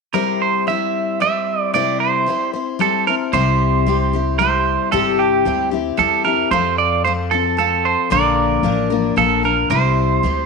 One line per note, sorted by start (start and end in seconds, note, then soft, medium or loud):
0.13 0.67 C3 medium
0.13 0.67 G3 medium
0.13 0.68 C4 medium
0.13 0.69 E4 medium
0.13 0.41 A#4 medium
0.13 0.70 C5 medium
0.42 0.66 C5 medium
0.67 1.20 G3 soft
0.67 1.21 C4 medium
0.67 1.22 E4 medium
0.67 1.23 C5 medium
0.67 1.21 E5 medium
1.20 1.74 G3 medium
1.20 1.75 C4 medium
1.20 1.75 E4 medium
1.20 1.75 C5 medium
1.20 1.71 E5 medium
1.74 2.27 C3 medium
1.74 2.25 G3 medium
1.74 2.26 C4 medium
1.74 2.28 E4 medium
1.74 2.28 C5 medium
1.74 2.00 D5 medium
2.00 2.50 C5 medium
2.26 2.53 G3 medium
2.26 2.54 C4 soft
2.26 2.53 E4 medium
2.26 2.52 C5 medium
2.53 2.79 C4 soft
2.53 2.80 E4 soft
2.53 2.80 C5 soft
2.79 3.06 G3 medium
2.79 3.07 C4 medium
2.79 3.07 E4 medium
2.79 3.05 A4 medium
2.79 3.06 C5 medium
3.07 3.33 C4 soft
3.07 3.33 E4 soft
3.07 3.14 A#4 medium
3.07 3.33 C5 soft
3.33 4.75 C2 medium
3.33 3.86 C3 medium
3.33 3.85 G3 medium
3.33 3.87 C4 medium
3.33 3.87 E4 medium
3.33 3.87 G4 medium
3.33 4.36 C5 medium
3.87 4.13 G3 medium
3.87 4.14 C4 medium
3.87 4.13 E4 medium
3.87 4.12 G4 medium
4.13 4.39 C4 soft
4.13 4.40 E4 soft
4.13 4.40 G4 medium
4.39 4.91 G3 medium
4.39 4.92 C4 medium
4.39 4.92 E4 medium
4.39 4.93 G4 medium
4.39 4.92 C5 medium
4.92 5.40 G1 medium
4.92 5.45 C3 medium
4.92 5.44 G3 medium
4.92 5.46 C4 medium
4.92 5.46 E4 medium
4.92 5.46 G4 medium
4.92 5.20 A4 medium
5.19 5.69 G4 medium
5.45 5.91 D2 medium
5.45 5.72 G3 soft
5.45 5.73 C4 medium
5.45 5.72 E4 medium
5.45 5.70 G4 medium
5.71 5.97 C4 soft
5.71 5.98 E4 soft
5.71 5.98 G4 medium
5.97 6.44 E2 medium
5.97 6.25 G3 medium
5.97 6.25 C4 medium
5.97 6.25 E4 medium
5.97 6.23 G4 medium
5.97 6.24 A4 medium
6.24 6.51 C4 soft
6.24 6.52 E4 soft
6.24 6.51 G4 soft
6.24 6.50 A#4 medium
6.51 7.94 F2 medium
6.51 7.04 F3 medium
6.51 7.04 C4 medium
6.51 7.06 F4 medium
6.51 7.06 A4 medium
6.51 6.78 C5 loud
6.78 7.04 D5 medium
7.04 7.32 F3 soft
7.04 7.32 C4 medium
7.04 7.32 F4 medium
7.04 7.30 A4 medium
7.04 7.12 C5 medium
7.31 7.57 C4 soft
7.31 7.58 F4 soft
7.31 7.57 A4 medium
7.31 7.58 A4 soft
7.57 8.10 F3 medium
7.57 8.11 C4 medium
7.57 8.12 F4 medium
7.57 7.86 A4 medium
7.57 8.12 A4 medium
7.85 8.12 C5 medium
8.10 8.59 A#1 medium
8.10 8.64 A#2 medium
8.10 8.64 D3 medium
8.10 8.62 F3 medium
8.10 8.63 A#3 medium
8.10 8.64 D4 medium
8.10 8.64 A#4 medium
8.10 9.14 D5 medium
8.63 9.09 A1 medium
8.63 8.91 F3 medium
8.63 8.91 A#3 medium
8.63 8.90 D4 medium
8.63 8.89 A#4 medium
8.90 9.15 F3 soft
8.90 9.16 A#3 soft
8.90 9.17 D4 soft
8.90 9.17 A#4 medium
9.16 9.63 A#1 medium
9.16 9.44 F3 soft
9.16 9.44 A#3 medium
9.16 9.43 D4 medium
9.16 9.45 A4 medium
9.16 9.42 A#4 medium
9.43 9.70 F3 soft
9.43 9.70 A#3 soft
9.43 9.71 D4 soft
9.43 9.70 A#4 soft
9.43 9.70 A#4 medium
9.70 10.18 C2 medium
9.70 10.24 C3 medium
9.70 10.22 G3 medium
9.70 10.24 C4 medium
9.70 10.24 E4 medium
9.70 10.46 C5 medium
9.70 10.25 C5 medium
10.23 10.46 D2 medium
10.23 10.46 G3 medium
10.23 10.46 C4 medium
10.23 10.46 E4 medium
10.23 10.46 C5 medium